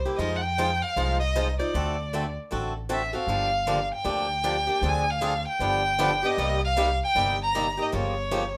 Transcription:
0.05 0.19 A#3 soft
0.05 0.20 E4 soft
0.05 0.19 G4 soft
0.17 0.81 F2 medium
0.17 0.40 F3 soft
0.17 0.40 G#3 medium
0.17 0.40 D#4 medium
0.17 0.41 F4 medium
0.17 0.40 C5 medium
0.17 0.37 D#5 medium
0.36 0.43 F#5 medium
0.41 0.83 G5 medium
0.58 0.69 F3 medium
0.58 0.69 G#3 medium
0.58 0.69 D#4 medium
0.58 0.70 F4 medium
0.58 0.70 C5 medium
0.82 1.19 F5 medium
0.96 1.58 C2 medium
0.96 1.17 F3 medium
0.96 1.18 G#3 medium
0.96 1.18 D#4 medium
0.96 1.18 F4 medium
0.96 1.18 C5 medium
1.20 1.56 D#5 medium
1.36 1.46 F3 medium
1.36 1.46 G#3 medium
1.36 1.47 D#4 medium
1.36 1.47 F4 medium
1.36 1.47 C5 medium
1.59 1.74 D#4 soft
1.59 1.74 F4 soft
1.59 1.74 C5 medium
1.59 2.32 D5 medium
1.74 2.36 D2 medium
1.74 1.95 D3 medium
1.74 1.95 A3 medium
1.74 1.95 C4 medium
1.74 1.95 F#4 medium
1.74 1.95 A4 medium
2.13 2.24 D3 medium
2.13 2.24 A3 medium
2.13 2.24 C4 medium
2.13 2.25 F#4 medium
2.13 2.25 A4 medium
2.51 3.14 A1 medium
2.51 2.72 D3 medium
2.51 2.72 A3 soft
2.51 2.72 C4 medium
2.51 2.72 F#4 medium
2.51 2.73 A4 medium
2.89 3.01 D3 medium
2.89 3.01 A3 medium
2.89 3.01 C4 medium
2.89 3.01 F#4 medium
2.89 3.01 A4 medium
2.93 3.14 E5 medium
3.13 3.29 C4 soft
3.13 3.28 F#4 soft
3.13 3.28 A4 soft
3.13 3.88 F5 medium
3.27 3.89 G1 medium
3.27 3.49 D3 medium
3.27 3.50 F3 medium
3.27 3.50 A#3 medium
3.27 3.50 D4 medium
3.27 3.50 G4 medium
3.67 3.78 D3 medium
3.67 3.78 F3 medium
3.67 3.78 A#3 medium
3.67 3.78 D4 medium
3.67 3.78 G4 medium
3.95 4.90 G5 medium
4.04 4.67 D2 medium
4.04 4.26 D3 medium
4.04 4.26 F3 medium
4.04 4.26 A#3 medium
4.04 4.26 D4 medium
4.04 4.26 G4 medium
4.44 4.55 D3 medium
4.44 4.55 F3 medium
4.44 4.55 A#3 medium
4.44 4.55 D4 medium
4.44 4.56 G4 medium
4.67 4.83 A#3 soft
4.67 4.82 D4 soft
4.67 4.82 G4 soft
4.82 5.44 D2 medium
4.82 5.04 D3 soft
4.82 5.04 F3 medium
4.82 5.04 C4 medium
4.82 5.04 D4 medium
4.82 5.04 G#4 medium
4.88 5.12 G#5 medium
5.10 5.47 F5 medium
5.21 5.33 D3 medium
5.21 5.33 F3 medium
5.21 5.33 C4 medium
5.21 5.33 D4 medium
5.21 5.33 G#4 medium
5.48 6.27 G5 medium
5.59 6.22 G1 medium
5.59 5.81 D3 medium
5.59 5.81 F3 medium
5.59 5.82 B3 medium
5.59 5.82 D4 medium
5.59 5.82 G4 medium
5.99 6.10 D3 medium
5.99 6.10 F3 medium
5.99 6.10 B3 medium
5.99 6.10 D4 medium
5.99 6.10 G4 medium
6.23 6.38 B3 soft
6.23 6.38 D4 soft
6.23 6.37 G4 medium
6.23 6.63 D#5 medium
6.38 7.00 C2 medium
6.38 6.59 C3 medium
6.38 6.59 G3 medium
6.38 6.59 A#3 medium
6.38 6.59 D#4 medium
6.38 6.59 G4 medium
6.65 6.99 F5 medium
6.77 6.88 C3 medium
6.77 6.88 G3 medium
6.77 6.88 A#3 medium
6.77 6.88 D#4 medium
6.77 6.88 G4 medium
7.04 7.38 G5 medium
7.15 7.77 G1 medium
7.15 7.36 C3 medium
7.15 7.36 G3 medium
7.15 7.36 A#3 medium
7.15 7.37 D#4 medium
7.15 7.37 G4 medium
7.43 7.84 A#5 medium
7.55 7.65 C3 medium
7.55 7.66 G3 medium
7.55 7.66 A#3 medium
7.55 7.66 D#4 medium
7.55 7.66 G4 medium
7.77 7.91 A#3 soft
7.77 7.92 D#4 soft
7.77 7.92 G4 soft
7.82 7.95 D#5 medium
7.92 8.55 G1 medium
7.92 8.13 C#3 medium
7.92 8.13 F3 soft
7.92 8.13 A#3 medium
7.92 8.14 F4 medium
7.92 8.14 G4 medium
7.97 8.57 C#5 medium
8.31 8.42 C#3 medium
8.31 8.42 F3 medium
8.31 8.42 A#3 medium
8.31 8.42 F4 medium
8.31 8.42 G4 medium

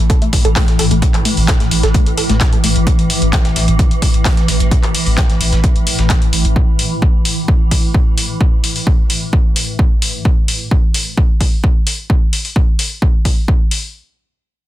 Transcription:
0.00 10.30 A2 medium
0.00 10.30 E3 medium
0.10 0.14 A4 medium
0.10 kick loud
0.10 closed hi-hat medium
0.22 0.33 A1 medium
0.22 0.32 A3 medium
0.22 closed hi-hat medium
0.33 kick medium
0.33 closed hi-hat medium
0.33 open hi-hat loud
0.45 0.56 A1 medium
0.45 0.49 A4 medium
0.45 closed hi-hat medium
0.56 0.67 A3 medium
0.56 kick loud
0.56 snare loud
0.56 clap loud
0.56 closed hi-hat loud
0.56 open hi-hat medium
0.68 snare soft
0.68 closed hi-hat medium
0.79 0.90 A1 loud
0.79 0.84 A4 medium
0.79 snare medium
0.79 closed hi-hat medium
0.79 open hi-hat loud
0.91 1.02 A1 medium
0.91 1.01 A3 medium
0.91 closed hi-hat medium
0.91 closed hi-hat soft
1.02 kick loud
1.02 closed hi-hat medium
1.14 1.25 A1 medium
1.14 1.18 A4 medium
1.14 clap soft
1.14 closed hi-hat medium
1.25 1.36 A3 medium
1.25 closed hi-hat medium
1.25 open hi-hat loud
1.37 1.48 A1 medium
1.37 open hi-hat medium
1.48 1.53 A4 medium
1.48 kick loud
1.48 snare loud
1.48 clap loud
1.48 closed hi-hat loud
1.48 closed hi-hat medium
1.60 1.71 A1 medium
1.60 1.71 A3 medium
1.60 snare soft
1.60 closed hi-hat medium
1.71 1.83 A1 loud
1.71 closed hi-hat medium
1.71 open hi-hat loud
1.83 1.94 A1 medium
1.83 1.88 A4 medium
1.83 snare soft
1.83 closed hi-hat medium
1.94 2.06 A3 medium
1.94 kick loud
1.94 closed hi-hat loud
1.94 closed hi-hat medium
2.06 2.17 A1 medium
2.06 closed hi-hat medium
2.17 2.22 A4 medium
2.17 closed hi-hat medium
2.17 open hi-hat loud
2.29 2.40 A1 medium
2.29 2.40 A3 medium
2.29 snare medium
2.29 closed hi-hat medium
2.41 kick loud
2.41 snare loud
2.41 clap loud
2.41 closed hi-hat loud
2.41 closed hi-hat medium
2.53 2.57 A4 medium
2.53 closed hi-hat medium
2.64 2.75 A1 loud
2.64 2.75 A3 medium
2.64 closed hi-hat medium
2.64 open hi-hat loud
2.76 2.87 A1 medium
2.76 closed hi-hat medium
2.87 kick loud
2.87 closed hi-hat medium
2.99 3.10 A1 medium
2.99 closed hi-hat medium
3.10 closed hi-hat medium
3.10 open hi-hat loud
3.22 3.33 A1 medium
3.22 closed hi-hat medium
3.33 kick loud
3.33 snare loud
3.33 clap loud
3.33 closed hi-hat medium
3.45 3.55 A1 medium
3.45 snare soft
3.45 closed hi-hat medium
3.56 3.67 A1 loud
3.56 snare medium
3.56 closed hi-hat medium
3.56 open hi-hat loud
3.68 3.79 A1 medium
3.68 closed hi-hat medium
3.79 kick loud
3.79 closed hi-hat medium
3.91 4.02 A1 medium
3.91 closed hi-hat medium
4.02 kick medium
4.02 closed hi-hat medium
4.02 open hi-hat loud
4.14 4.25 A1 medium
4.14 closed hi-hat medium
4.25 kick loud
4.25 snare loud
4.25 clap loud
4.25 closed hi-hat medium
4.25 open hi-hat medium
4.37 snare soft
4.37 closed hi-hat medium
4.48 4.60 A1 loud
4.48 snare medium
4.48 closed hi-hat medium
4.48 open hi-hat loud
4.60 4.71 A1 medium
4.60 closed hi-hat medium
4.60 closed hi-hat soft
4.71 kick loud
4.71 closed hi-hat medium
4.83 4.94 A1 medium
4.83 clap soft
4.83 closed hi-hat medium
4.95 closed hi-hat medium
4.95 open hi-hat loud
5.06 5.17 A1 medium
5.06 open hi-hat medium
5.18 kick loud
5.18 snare loud
5.18 clap loud
5.18 closed hi-hat medium
5.29 5.40 A1 medium
5.29 snare soft
5.29 closed hi-hat soft
5.41 5.52 A1 loud
5.41 closed hi-hat medium
5.41 open hi-hat loud
5.52 5.63 A1 medium
5.52 snare soft
5.52 closed hi-hat soft
5.64 kick loud
5.64 closed hi-hat medium
5.76 5.86 A1 medium
5.76 closed hi-hat medium
5.87 closed hi-hat medium
5.87 open hi-hat loud
5.99 6.10 A1 medium
5.99 snare medium
5.99 closed hi-hat medium
6.10 kick loud
6.10 snare loud
6.10 clap loud
6.10 closed hi-hat medium
6.22 closed hi-hat medium
6.33 6.44 A1 loud
6.33 closed hi-hat medium
6.33 open hi-hat loud
6.45 6.56 A1 medium
6.45 closed hi-hat medium
6.56 kick loud
6.79 open hi-hat loud
7.02 kick loud
7.25 open hi-hat loud
7.48 kick loud
7.71 kick medium
7.71 open hi-hat loud
7.94 kick loud
8.18 open hi-hat loud
8.41 kick loud
8.64 open hi-hat loud
8.76 open hi-hat medium
8.87 kick loud
9.10 open hi-hat loud
9.33 kick loud
9.56 open hi-hat loud
9.79 kick loud
10.02 open hi-hat loud
10.25 kick loud
10.48 open hi-hat medium
10.71 kick loud
10.94 open hi-hat loud
11.17 kick loud
11.41 kick medium
11.41 open hi-hat loud
11.64 kick loud
11.87 open hi-hat loud
12.10 kick loud
12.33 open hi-hat loud
12.45 open hi-hat medium
12.56 kick loud
12.79 open hi-hat loud
13.02 kick loud
13.25 kick medium
13.25 open hi-hat loud
13.48 kick loud
13.71 open hi-hat loud

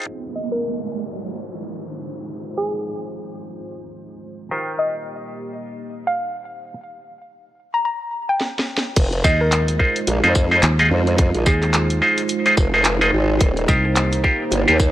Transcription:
0.02 closed hi-hat soft
0.03 4.47 G#3 medium
0.03 4.49 D#4 medium
0.03 6.70 D#4 medium
0.03 4.49 F4 medium
0.03 4.47 F4 medium
0.03 4.49 G#4 medium
0.03 4.49 C5 medium
0.03 6.70 C5 medium
0.03 closed hi-hat soft
0.03 downlifter medium
0.35 0.48 D#5 medium
0.52 0.75 A#4 medium
2.57 3.13 G#4 medium
4.51 6.74 D#3 medium
4.51 6.72 A#3 medium
4.51 6.74 F4 medium
4.51 6.74 G4 medium
4.51 6.72 G4 medium
4.51 6.74 A#4 medium
4.51 6.74 C5 medium
4.79 4.92 D#5 medium
6.07 6.30 F5 medium
7.74 7.81 A#5 medium
7.85 7.96 A#5 medium
8.29 8.96 G5 medium
8.41 snare medium
8.59 snare medium
8.78 snare medium
8.96 9.22 F1 loud
8.96 13.37 G#3 medium
8.96 14.92 D#4 medium
8.96 13.37 F4 medium
8.96 14.92 C5 medium
8.96 kick loud
8.96 closed hi-hat medium
8.96 crash loud
9.13 closed hi-hat soft
9.24 9.78 D#2 loud
9.24 9.77 D#4 medium
9.24 9.77 F4 medium
9.24 9.77 G#4 medium
9.24 9.77 C5 loud
9.24 9.37 D#5 medium
9.24 kick loud
9.24 tambourine medium
9.41 9.64 A#4 medium
9.41 cross-stick medium
9.52 clap loud
9.52 closed hi-hat medium
9.68 closed hi-hat medium
9.79 10.00 D#4 medium
9.79 10.00 F4 medium
9.79 10.00 G#4 medium
9.79 10.00 C5 medium
9.79 kick medium
9.96 closed hi-hat medium
10.07 10.21 A#1 loud
10.07 closed hi-hat medium
10.24 10.61 F2 loud
10.24 10.33 D#4 medium
10.24 10.33 F4 medium
10.24 10.33 G#4 medium
10.24 10.33 C5 medium
10.24 closed hi-hat soft
10.35 kick loud
10.35 tambourine medium
10.51 10.61 D#4 medium
10.51 10.61 F4 medium
10.51 10.61 G#4 medium
10.51 10.61 C5 loud
10.63 10.89 D#2 medium
10.63 clap loud
10.63 closed hi-hat medium
10.79 10.89 D#4 loud
10.79 10.89 F4 medium
10.79 10.89 G#4 medium
10.79 10.89 D#5 loud
10.79 closed hi-hat soft
10.91 11.32 F2 loud
11.07 closed hi-hat soft
11.18 kick loud
11.18 closed hi-hat medium
11.35 11.44 A#1 medium
11.35 closed hi-hat soft
11.46 12.00 D#2 loud
11.46 11.99 D#4 medium
11.46 11.99 F4 medium
11.46 11.99 G#4 medium
11.46 12.02 G#4 medium
11.46 11.99 C5 loud
11.46 kick loud
11.46 tambourine medium
11.62 cross-stick medium
11.62 clap soft
11.62 closed hi-hat soft
11.70 cross-stick soft
11.70 clap loud
11.70 closed hi-hat medium
11.90 closed hi-hat medium
12.02 12.22 D#4 medium
12.02 12.22 F4 medium
12.02 12.22 G#4 medium
12.02 12.22 C5 medium
12.18 closed hi-hat medium
12.29 closed hi-hat medium
12.46 12.56 D#4 medium
12.46 12.56 F4 medium
12.46 12.56 G#4 medium
12.46 12.55 C5 medium
12.46 closed hi-hat soft
12.57 13.11 F1 loud
12.57 kick loud
12.57 cross-stick soft
12.57 tambourine medium
12.74 12.83 D#4 medium
12.74 12.83 F4 medium
12.74 12.83 G#4 medium
12.74 12.83 C5 loud
12.85 clap loud
12.85 closed hi-hat medium
13.01 13.11 D#4 loud
13.01 13.11 F4 medium
13.01 13.11 G#4 medium
13.01 13.11 D#5 loud
13.01 closed hi-hat soft
13.13 13.39 G#1 loud
13.29 cross-stick soft
13.41 13.67 D#1 loud
13.41 14.92 A#3 medium
13.41 14.92 G4 medium
13.41 kick loud
13.41 closed hi-hat medium
13.57 closed hi-hat soft
13.68 14.22 C2 medium
13.68 14.21 F4 medium
13.68 14.21 G4 medium
13.68 14.21 A#4 medium
13.68 14.21 C5 loud
13.68 13.81 D#5 medium
13.68 kick loud
13.68 tambourine medium
13.85 cross-stick medium
13.96 clap loud
13.96 closed hi-hat medium
14.13 closed hi-hat medium
14.24 14.44 F4 medium
14.24 14.44 G4 medium
14.24 14.44 A#4 medium
14.24 14.44 C5 medium
14.24 kick medium
14.51 14.65 G1 loud
14.51 closed hi-hat medium
14.68 14.92 D#2 loud
14.68 14.77 F4 medium
14.68 14.77 G4 medium
14.68 14.77 A#4 medium
14.68 14.77 C5 medium
14.68 closed hi-hat soft
14.80 kick loud
14.80 tambourine medium

